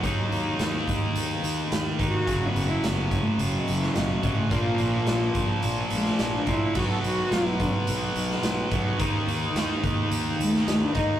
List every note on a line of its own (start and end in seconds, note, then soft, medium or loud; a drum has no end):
0.00 0.23 D#2 medium
0.00 1.97 D#3 medium
0.00 1.40 F#3 loud
0.00 1.98 A#3 medium
0.00 kick loud
0.00 closed hi-hat medium
0.05 1.97 D#4 medium
0.31 0.51 D#2 medium
0.31 closed hi-hat medium
0.59 0.79 D#2 loud
0.59 snare medium
0.59 closed hi-hat medium
0.88 1.07 D#2 medium
0.88 kick medium
0.88 closed hi-hat medium
1.15 1.35 D#2 medium
1.15 closed hi-hat loud
1.43 1.62 D#2 medium
1.43 closed hi-hat medium
1.71 1.91 D#2 medium
1.71 snare loud
1.71 closed hi-hat loud
1.99 2.19 D#2 medium
1.99 2.27 D#3 medium
1.99 2.26 A#3 medium
1.99 2.25 D#4 medium
1.99 kick medium
1.99 closed hi-hat medium
2.10 2.49 F#4 loud
2.26 2.47 F#1 medium
2.26 4.21 F#2 medium
2.26 4.22 C#3 medium
2.26 4.21 F#3 medium
2.26 kick loud
2.26 closed hi-hat loud
2.48 2.69 B3 medium
2.55 2.74 F#1 medium
2.55 closed hi-hat medium
2.68 2.87 E4 medium
2.83 3.22 F#1 medium
2.83 3.05 B3 medium
2.83 snare loud
2.83 closed hi-hat medium
3.03 3.23 F#3 medium
3.11 kick medium
3.11 closed hi-hat medium
3.22 3.42 A3 medium
3.38 3.58 F#1 medium
3.38 3.58 F#3 loud
3.38 closed hi-hat medium
3.59 3.77 B2 medium
3.67 3.87 F#1 medium
3.67 closed hi-hat medium
3.77 3.97 E3 medium
3.82 snare soft
3.95 4.15 F#1 medium
3.95 4.13 B2 medium
3.95 snare loud
3.95 closed hi-hat medium
4.22 4.43 A1 medium
4.22 4.51 F#2 medium
4.22 4.50 C#3 medium
4.22 4.49 F#3 medium
4.22 kick medium
4.22 closed hi-hat medium
4.33 4.54 A2 medium
4.50 4.71 A#1 medium
4.50 6.45 A#2 medium
4.50 5.61 A#2 loud
4.50 6.46 F3 medium
4.50 6.45 A#3 loud
4.50 kick loud
4.50 closed hi-hat medium
4.78 4.99 A#1 medium
4.78 closed hi-hat medium
5.07 5.26 A#1 medium
5.07 snare loud
5.07 closed hi-hat medium
5.35 5.54 A#1 medium
5.35 kick medium
5.35 closed hi-hat medium
5.63 5.83 A#1 medium
5.63 closed hi-hat medium
5.90 6.11 A#1 medium
5.90 6.22 A3 medium
5.90 closed hi-hat medium
6.05 snare soft
6.19 6.39 A#1 medium
6.19 6.33 A#3 medium
6.19 snare loud
6.19 closed hi-hat medium
6.35 6.50 D4 medium
6.46 6.66 A#1 medium
6.46 6.73 A#2 medium
6.46 6.74 F3 medium
6.46 6.73 A#3 medium
6.46 6.77 E4 medium
6.46 kick medium
6.46 closed hi-hat medium
6.73 6.95 B1 medium
6.73 8.69 B2 medium
6.73 8.72 F#3 loud
6.73 8.69 B3 loud
6.73 6.89 F#4 medium
6.73 kick loud
6.73 crash medium
6.90 7.03 A4 medium
7.03 7.22 B1 medium
7.03 7.58 F#4 loud
7.03 closed hi-hat medium
7.31 7.70 B1 loud
7.31 snare loud
7.31 closed hi-hat medium
7.60 kick medium
7.60 closed hi-hat medium
7.87 8.07 B1 medium
7.87 closed hi-hat loud
8.15 8.35 B1 medium
8.15 closed hi-hat medium
8.30 snare soft
8.43 8.62 B1 medium
8.43 snare loud
8.43 closed hi-hat medium
8.71 8.91 B1 loud
8.71 8.99 B2 medium
8.71 9.00 F#3 medium
8.71 8.97 B3 medium
8.71 kick medium
8.71 closed hi-hat medium
8.99 9.19 D#2 medium
8.99 10.94 D#3 medium
8.99 10.94 A#3 medium
8.99 10.93 D#4 medium
8.99 kick loud
8.99 closed hi-hat medium
9.27 9.46 D#2 medium
9.27 closed hi-hat medium
9.54 9.74 D#2 loud
9.54 snare medium
9.54 closed hi-hat medium
9.84 10.03 D#2 medium
9.84 kick medium
9.84 closed hi-hat medium
10.11 10.30 D#2 medium
10.11 closed hi-hat medium
10.39 10.58 D#2 medium
10.39 10.67 A3 loud
10.39 closed hi-hat medium
10.55 snare soft
10.68 10.87 D#2 medium
10.68 10.83 A3 medium
10.68 snare loud
10.68 closed hi-hat medium
10.82 10.95 D4 loud
10.94 11.15 D#2 medium
10.94 11.20 D#3 medium
10.94 11.20 A#3 medium
10.94 11.20 D#4 medium
10.94 kick medium
10.94 closed hi-hat medium